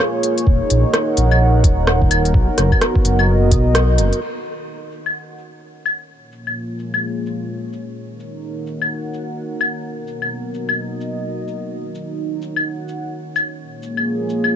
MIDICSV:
0, 0, Header, 1, 4, 480
1, 0, Start_track
1, 0, Key_signature, -6, "minor"
1, 0, Tempo, 468750
1, 478, Time_signature, 4, 2, 24, 8
1, 14908, End_track
2, 0, Start_track
2, 0, Title_t, "Analog synth pad"
2, 0, Program_c, 0, 89
2, 0, Note_on_c, 0, 58, 73
2, 0, Note_on_c, 0, 65, 84
2, 0, Note_on_c, 0, 68, 76
2, 0, Note_on_c, 0, 73, 83
2, 480, Note_off_c, 0, 65, 0
2, 483, Note_on_c, 0, 63, 72
2, 693, Note_on_c, 0, 70, 77
2, 789, Note_on_c, 0, 78, 77
2, 1258, Note_off_c, 0, 58, 0
2, 1260, Note_off_c, 0, 68, 0
2, 2402, Note_on_c, 0, 59, 85
2, 2577, Note_on_c, 0, 66, 81
2, 3080, Note_on_c, 0, 75, 72
2, 3179, Note_off_c, 0, 73, 0
2, 3180, Note_off_c, 0, 63, 0
2, 3181, Note_off_c, 0, 78, 0
2, 4313, Note_on_c, 0, 63, 61
2, 4320, Note_off_c, 0, 59, 0
2, 4850, Note_on_c, 0, 73, 68
2, 5026, Note_on_c, 0, 78, 73
2, 5100, Note_off_c, 0, 66, 0
2, 5102, Note_off_c, 0, 75, 0
2, 6232, Note_on_c, 0, 58, 80
2, 6238, Note_off_c, 0, 78, 0
2, 6284, Note_on_c, 0, 65, 80
2, 6578, Note_on_c, 0, 68, 72
2, 6953, Note_off_c, 0, 63, 0
2, 7019, Note_off_c, 0, 70, 0
2, 8155, Note_on_c, 0, 63, 64
2, 8161, Note_off_c, 0, 65, 0
2, 8192, Note_on_c, 0, 70, 64
2, 8611, Note_on_c, 0, 78, 80
2, 8934, Note_off_c, 0, 58, 0
2, 8939, Note_off_c, 0, 68, 0
2, 10074, Note_on_c, 0, 59, 76
2, 10255, Note_on_c, 0, 66, 75
2, 10753, Note_on_c, 0, 75, 70
2, 10855, Note_off_c, 0, 63, 0
2, 10856, Note_off_c, 0, 73, 0
2, 10856, Note_off_c, 0, 78, 0
2, 11990, Note_on_c, 0, 63, 71
2, 11996, Note_off_c, 0, 59, 0
2, 12307, Note_on_c, 0, 73, 65
2, 12775, Note_off_c, 0, 66, 0
2, 12777, Note_off_c, 0, 75, 0
2, 12787, Note_on_c, 0, 78, 73
2, 13916, Note_off_c, 0, 78, 0
2, 13917, Note_on_c, 0, 58, 72
2, 14066, Note_on_c, 0, 68, 76
2, 14102, Note_on_c, 0, 65, 77
2, 14693, Note_off_c, 0, 63, 0
2, 14696, Note_off_c, 0, 70, 0
2, 14908, Note_off_c, 0, 58, 0
2, 14908, Note_off_c, 0, 65, 0
2, 14908, Note_off_c, 0, 68, 0
2, 14908, Note_off_c, 0, 73, 0
2, 14908, End_track
3, 0, Start_track
3, 0, Title_t, "Detuned saw bass"
3, 0, Program_c, 1, 39
3, 479, Note_on_c, 1, 27, 100
3, 614, Note_off_c, 1, 27, 0
3, 726, Note_on_c, 1, 34, 87
3, 857, Note_off_c, 1, 34, 0
3, 1203, Note_on_c, 1, 34, 88
3, 1669, Note_off_c, 1, 34, 0
3, 1680, Note_on_c, 1, 27, 84
3, 2387, Note_off_c, 1, 27, 0
3, 2398, Note_on_c, 1, 35, 97
3, 2533, Note_off_c, 1, 35, 0
3, 2640, Note_on_c, 1, 30, 87
3, 2774, Note_off_c, 1, 30, 0
3, 3119, Note_on_c, 1, 30, 88
3, 3597, Note_on_c, 1, 35, 86
3, 3612, Note_off_c, 1, 30, 0
3, 3733, Note_off_c, 1, 35, 0
3, 3743, Note_on_c, 1, 35, 100
3, 4075, Note_on_c, 1, 30, 100
3, 4090, Note_off_c, 1, 35, 0
3, 4212, Note_off_c, 1, 30, 0
3, 14908, End_track
4, 0, Start_track
4, 0, Title_t, "Drums"
4, 0, Note_on_c, 9, 37, 97
4, 98, Note_off_c, 9, 37, 0
4, 238, Note_on_c, 9, 42, 51
4, 341, Note_off_c, 9, 42, 0
4, 385, Note_on_c, 9, 42, 28
4, 478, Note_on_c, 9, 36, 110
4, 488, Note_off_c, 9, 42, 0
4, 580, Note_off_c, 9, 36, 0
4, 719, Note_on_c, 9, 42, 53
4, 821, Note_off_c, 9, 42, 0
4, 958, Note_on_c, 9, 37, 97
4, 958, Note_on_c, 9, 42, 29
4, 1060, Note_off_c, 9, 37, 0
4, 1060, Note_off_c, 9, 42, 0
4, 1199, Note_on_c, 9, 42, 51
4, 1301, Note_off_c, 9, 42, 0
4, 1346, Note_on_c, 9, 75, 53
4, 1448, Note_off_c, 9, 75, 0
4, 1679, Note_on_c, 9, 36, 100
4, 1679, Note_on_c, 9, 42, 51
4, 1781, Note_off_c, 9, 36, 0
4, 1782, Note_off_c, 9, 42, 0
4, 1918, Note_on_c, 9, 37, 100
4, 2020, Note_off_c, 9, 37, 0
4, 2066, Note_on_c, 9, 36, 97
4, 2159, Note_on_c, 9, 42, 53
4, 2159, Note_on_c, 9, 75, 65
4, 2168, Note_off_c, 9, 36, 0
4, 2261, Note_off_c, 9, 42, 0
4, 2261, Note_off_c, 9, 75, 0
4, 2306, Note_on_c, 9, 42, 29
4, 2398, Note_on_c, 9, 36, 115
4, 2409, Note_off_c, 9, 42, 0
4, 2501, Note_off_c, 9, 36, 0
4, 2639, Note_on_c, 9, 37, 58
4, 2639, Note_on_c, 9, 42, 54
4, 2742, Note_off_c, 9, 37, 0
4, 2742, Note_off_c, 9, 42, 0
4, 2785, Note_on_c, 9, 36, 58
4, 2786, Note_on_c, 9, 75, 39
4, 2882, Note_on_c, 9, 37, 100
4, 2882, Note_on_c, 9, 42, 31
4, 2888, Note_off_c, 9, 36, 0
4, 2889, Note_off_c, 9, 75, 0
4, 2985, Note_off_c, 9, 37, 0
4, 2985, Note_off_c, 9, 42, 0
4, 3026, Note_on_c, 9, 36, 94
4, 3122, Note_on_c, 9, 42, 53
4, 3128, Note_off_c, 9, 36, 0
4, 3224, Note_off_c, 9, 42, 0
4, 3267, Note_on_c, 9, 75, 53
4, 3370, Note_off_c, 9, 75, 0
4, 3598, Note_on_c, 9, 36, 100
4, 3599, Note_on_c, 9, 42, 53
4, 3700, Note_off_c, 9, 36, 0
4, 3701, Note_off_c, 9, 42, 0
4, 3838, Note_on_c, 9, 37, 98
4, 3838, Note_on_c, 9, 42, 32
4, 3940, Note_off_c, 9, 37, 0
4, 3940, Note_off_c, 9, 42, 0
4, 4077, Note_on_c, 9, 42, 53
4, 4180, Note_off_c, 9, 42, 0
4, 4225, Note_on_c, 9, 42, 31
4, 4319, Note_on_c, 9, 49, 72
4, 4328, Note_off_c, 9, 42, 0
4, 4421, Note_off_c, 9, 49, 0
4, 4559, Note_on_c, 9, 69, 64
4, 4662, Note_off_c, 9, 69, 0
4, 5037, Note_on_c, 9, 69, 62
4, 5140, Note_off_c, 9, 69, 0
4, 5182, Note_on_c, 9, 75, 47
4, 5284, Note_off_c, 9, 75, 0
4, 5516, Note_on_c, 9, 69, 62
4, 5619, Note_off_c, 9, 69, 0
4, 5996, Note_on_c, 9, 69, 63
4, 5996, Note_on_c, 9, 75, 57
4, 6098, Note_off_c, 9, 69, 0
4, 6098, Note_off_c, 9, 75, 0
4, 6478, Note_on_c, 9, 69, 62
4, 6580, Note_off_c, 9, 69, 0
4, 6625, Note_on_c, 9, 75, 32
4, 6728, Note_off_c, 9, 75, 0
4, 6959, Note_on_c, 9, 69, 59
4, 7061, Note_off_c, 9, 69, 0
4, 7105, Note_on_c, 9, 75, 47
4, 7208, Note_off_c, 9, 75, 0
4, 7439, Note_on_c, 9, 69, 62
4, 7541, Note_off_c, 9, 69, 0
4, 7918, Note_on_c, 9, 69, 60
4, 8021, Note_off_c, 9, 69, 0
4, 8398, Note_on_c, 9, 69, 60
4, 8500, Note_off_c, 9, 69, 0
4, 8878, Note_on_c, 9, 69, 58
4, 8981, Note_off_c, 9, 69, 0
4, 9027, Note_on_c, 9, 75, 43
4, 9130, Note_off_c, 9, 75, 0
4, 9360, Note_on_c, 9, 69, 59
4, 9462, Note_off_c, 9, 69, 0
4, 9837, Note_on_c, 9, 69, 60
4, 9837, Note_on_c, 9, 75, 54
4, 9939, Note_off_c, 9, 69, 0
4, 9939, Note_off_c, 9, 75, 0
4, 10318, Note_on_c, 9, 69, 63
4, 10420, Note_off_c, 9, 69, 0
4, 10465, Note_on_c, 9, 75, 31
4, 10567, Note_off_c, 9, 75, 0
4, 10798, Note_on_c, 9, 69, 63
4, 10901, Note_off_c, 9, 69, 0
4, 10944, Note_on_c, 9, 75, 45
4, 11046, Note_off_c, 9, 75, 0
4, 11275, Note_on_c, 9, 69, 60
4, 11377, Note_off_c, 9, 69, 0
4, 11755, Note_on_c, 9, 69, 60
4, 11857, Note_off_c, 9, 69, 0
4, 12238, Note_on_c, 9, 69, 66
4, 12340, Note_off_c, 9, 69, 0
4, 12717, Note_on_c, 9, 69, 61
4, 12820, Note_off_c, 9, 69, 0
4, 12866, Note_on_c, 9, 75, 45
4, 12968, Note_off_c, 9, 75, 0
4, 13197, Note_on_c, 9, 69, 66
4, 13300, Note_off_c, 9, 69, 0
4, 13679, Note_on_c, 9, 69, 62
4, 13679, Note_on_c, 9, 75, 55
4, 13781, Note_off_c, 9, 69, 0
4, 13781, Note_off_c, 9, 75, 0
4, 14161, Note_on_c, 9, 69, 67
4, 14263, Note_off_c, 9, 69, 0
4, 14309, Note_on_c, 9, 75, 34
4, 14411, Note_off_c, 9, 75, 0
4, 14640, Note_on_c, 9, 69, 66
4, 14742, Note_off_c, 9, 69, 0
4, 14787, Note_on_c, 9, 75, 46
4, 14889, Note_off_c, 9, 75, 0
4, 14908, End_track
0, 0, End_of_file